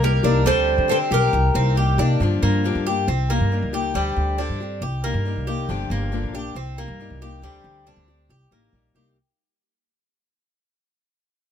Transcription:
0.00 0.21 C2 loud
0.00 0.23 G3 soft
0.00 0.23 A#3 medium
0.00 0.24 A#3 soft
0.00 0.23 D#4 medium
0.04 0.22 G4 medium
0.04 0.47 A#4 medium
0.23 0.45 C2 loud
0.23 0.44 G3 medium
0.23 0.45 A#3 medium
0.23 0.45 D4 medium
0.23 0.45 D#4 medium
0.23 0.45 G4 medium
0.44 0.77 D2 medium
0.44 0.87 D3 medium
0.44 0.88 G3 medium
0.44 0.89 C4 medium
0.44 0.89 G4 medium
0.44 0.87 A4 medium
0.44 0.90 C5 loud
0.78 0.99 D3 medium
0.88 1.10 D3 medium
0.88 1.10 G3 medium
0.88 1.11 C4 medium
0.88 1.10 C4 medium
0.88 1.09 G4 medium
0.88 0.96 A4 medium
0.88 0.97 C5 medium
1.10 1.32 B1 medium
1.10 1.32 G3 soft
1.10 1.33 C4 soft
1.10 1.32 G4 medium
1.10 1.54 G4 medium
1.10 1.74 A#4 medium
1.33 1.54 C2 loud
1.33 muted steel-string acoustic guitar stroke medium
1.54 1.96 C2 loud
1.54 1.75 A#3 soft
1.54 1.76 C4 medium
1.54 1.76 D#4 soft
1.54 1.76 G4 soft
1.75 1.97 G3 soft
1.75 1.98 A#3 medium
1.75 1.98 D#4 soft
1.75 1.98 G4 medium
1.75 1.97 G4 medium
1.98 2.19 C3 loud
1.98 2.21 G3 soft
1.98 2.20 A#3 medium
1.98 2.20 D4 medium
1.98 2.20 D#4 medium
1.98 2.19 G4 medium
2.20 2.41 G2 medium
2.20 2.63 D3 medium
2.20 2.64 F3 medium
2.20 2.64 A#3 medium
2.20 2.64 D4 medium
2.20 2.65 G4 medium
2.42 2.73 G2 loud
2.42 2.85 A#3 medium
2.64 2.85 D3 medium
2.64 2.86 F3 medium
2.64 2.86 A#3 medium
2.64 2.86 D4 medium
2.64 2.86 G4 medium
2.75 3.06 G2 medium
2.87 3.08 A#3 soft
2.87 3.08 D4 medium
2.87 3.07 G4 medium
3.08 3.39 C2 medium
3.08 3.29 C4 medium
3.08 muted steel-string acoustic guitar stroke medium
3.30 3.72 A#3 medium
3.30 3.51 A#3 soft
3.30 3.51 D#4 soft
3.30 3.51 G4 soft
3.40 3.61 G2 medium
3.52 3.73 G3 medium
3.52 3.73 A#3 soft
3.52 3.72 D#4 soft
3.52 3.72 G4 medium
3.62 3.93 C#2 medium
3.73 3.94 G3 medium
3.73 3.95 A#3 medium
3.73 3.94 D#4 medium
3.73 3.94 G4 medium
3.73 3.95 G4 medium
3.94 4.16 D2 medium
3.94 4.37 D3 medium
3.94 4.38 G3 medium
3.94 4.37 G3 medium
3.94 4.38 C4 medium
3.94 4.39 G4 medium
4.16 4.48 D2 medium
4.38 4.59 D3 medium
4.38 4.60 G3 medium
4.38 4.60 C4 medium
4.38 4.81 D4 medium
4.38 4.59 G4 medium
4.49 4.80 G2 medium
4.60 4.81 G3 soft
4.60 4.82 C4 soft
4.60 4.81 G4 medium
4.81 5.13 C2 medium
4.81 5.03 G4 medium
4.81 muted steel-string acoustic guitar stroke medium
5.04 5.46 A#3 medium
5.04 5.25 A#3 soft
5.04 5.26 D#4 soft
5.04 5.25 G4 soft
5.14 5.35 G2 loud
5.25 5.46 G3 medium
5.25 5.47 A#3 medium
5.25 5.47 D#4 medium
5.25 5.46 G4 medium
5.36 5.67 C2 medium
5.47 5.69 G3 medium
5.47 5.69 A#3 medium
5.47 5.69 D#4 medium
5.47 5.68 G4 medium
5.47 5.90 G4 medium
5.69 5.89 G1 loud
5.69 6.11 D3 medium
5.69 6.11 F3 medium
5.69 6.12 A#3 medium
5.69 6.12 D4 medium
5.69 6.13 G4 medium
5.90 6.21 G1 loud
5.90 6.33 A#3 medium
6.12 6.33 D3 medium
6.12 6.33 F3 medium
6.12 6.34 A#3 medium
6.12 6.33 D4 medium
6.12 6.32 G4 medium
6.23 6.54 A#1 medium
6.34 6.55 A#3 soft
6.34 6.55 D4 medium
6.34 6.55 G4 medium
6.34 6.56 G4 medium
6.55 6.87 C2 medium
6.55 6.77 C4 medium
6.55 muted steel-string acoustic guitar stroke medium
6.78 7.20 A#3 medium
6.78 6.99 A#3 soft
6.78 6.99 D#4 soft
6.78 6.99 G4 medium
6.88 7.09 G2 loud
7.00 7.21 G3 medium
7.00 7.21 A#3 medium
7.00 7.21 D#4 medium
7.00 7.20 G4 medium
7.10 7.41 C2 medium
7.21 7.42 G3 medium
7.21 7.43 A#3 medium
7.21 7.43 D#4 medium
7.21 7.42 G4 medium
7.21 7.43 G4 medium
7.42 7.63 D2 loud
7.42 7.85 D3 medium
7.42 7.85 G3 medium
7.42 7.86 G3 medium
7.42 7.86 C4 medium
7.42 7.87 G4 medium
7.64 7.95 D2 medium
7.86 8.07 D3 medium
7.86 8.08 G3 medium
7.86 8.08 C4 medium
7.86 8.29 D4 medium
7.86 8.07 G4 medium
7.96 8.28 D2 medium
8.08 8.29 G3 soft
8.08 8.30 C4 soft
8.08 8.29 G4 medium
8.29 8.50 C2 medium
8.29 8.51 G4 medium
8.29 muted steel-string acoustic guitar stroke medium
8.51 8.71 A1 medium
8.51 8.94 A#3 medium
8.51 8.72 A#3 soft
8.51 8.73 D#4 soft
8.51 8.72 G4 medium
8.73 8.93 A#1 medium
8.73 8.94 G3 soft
8.73 8.94 A#3 soft
8.73 8.95 D#4 medium
8.73 8.94 G4 medium
8.95 9.14 C2 medium
8.95 9.17 G3 medium
8.95 9.17 A#3 medium
8.95 9.16 D#4 medium
8.95 9.16 G4 medium

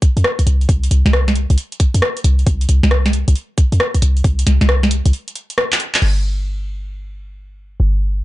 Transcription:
0.02 kick loud
0.02 closed hi-hat loud
0.17 0.23 F2 loud
0.17 closed hi-hat medium
0.24 cross-stick loud
0.39 kick medium
0.39 closed hi-hat medium
0.47 0.67 C2 medium
0.47 closed hi-hat loud
0.61 closed hi-hat soft
0.69 0.89 C2 loud
0.69 kick loud
0.69 closed hi-hat medium
0.83 closed hi-hat medium
0.91 1.03 C2 medium
0.91 closed hi-hat loud
1.06 1.47 C2 medium
1.06 snare medium
1.13 cross-stick loud
1.28 snare medium
1.28 closed hi-hat soft
1.36 closed hi-hat loud
1.50 1.57 C2 loud
1.50 closed hi-hat medium
1.58 closed hi-hat medium
1.72 closed hi-hat medium
1.80 kick loud
1.80 closed hi-hat loud
1.94 2.01 F2 loud
1.94 closed hi-hat medium
2.02 cross-stick loud
2.17 closed hi-hat medium
2.24 2.44 C2 medium
2.24 closed hi-hat loud
2.39 closed hi-hat soft
2.47 2.67 C2 loud
2.47 kick loud
2.47 closed hi-hat medium
2.61 closed hi-hat medium
2.69 2.81 C2 medium
2.69 closed hi-hat loud
2.83 3.24 C2 medium
2.83 snare medium
2.91 cross-stick loud
3.06 snare medium
3.06 closed hi-hat soft
3.13 closed hi-hat loud
3.28 3.34 C2 loud
3.28 closed hi-hat medium
3.36 closed hi-hat medium
3.58 kick loud
3.58 closed hi-hat loud
3.72 3.79 F2 medium
3.72 closed hi-hat medium
3.80 cross-stick loud
3.94 kick medium
3.94 closed hi-hat medium
4.02 4.22 C2 medium
4.02 closed hi-hat loud
4.17 closed hi-hat soft
4.24 4.44 C2 loud
4.24 kick loud
4.24 closed hi-hat medium
4.39 closed hi-hat medium
4.47 4.59 C2 medium
4.47 snare soft
4.47 closed hi-hat loud
4.61 5.02 C2 medium
4.61 snare medium
4.69 cross-stick loud
4.83 snare medium
4.83 closed hi-hat soft
4.91 closed hi-hat loud
5.06 5.12 C2 loud
5.06 closed hi-hat medium
5.13 closed hi-hat medium
5.28 closed hi-hat medium
5.35 closed hi-hat loud
5.50 closed hi-hat medium
5.58 cross-stick loud
5.72 clap medium
5.72 closed hi-hat medium
5.80 closed hi-hat loud
5.94 clap medium
5.94 closed hi-hat soft
6.02 7.78 G1 medium
6.02 crash medium
7.80 8.24 G1 medium

